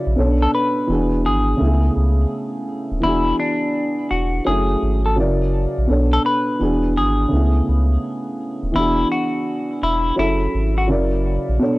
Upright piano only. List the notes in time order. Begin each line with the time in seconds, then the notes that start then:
Already playing: C#3 F#3 E4 A#4 D5
0.16 B2 B3 C#4 A4 C#5
0.24 D4
0.87 E3 B3 D4 F#4
0.91 G#4
1.57 C#3 A3 B3
1.63 E4 G#4
3.00 E3 B3
3.04 D4 F#4 G#4
4.45 F#3 C#4 E4 G#4
4.49 A3
5.16 C#3 F#3 E4 A#4 D5
5.87 B2 B3 D4 A4 C#5
6.59 E3 B3 D4 F#4 G#4
7.28 C#3 A3 B3
7.34 E4 G#4
8.72 E3 B3
8.76 D4 F#4 G#4
10.16 F#3 C#4 E4 G#4
10.20 A4
10.88 C#3 F#3 E4 A#4
10.92 D5
11.59 B2 B3 D4 A4 C#5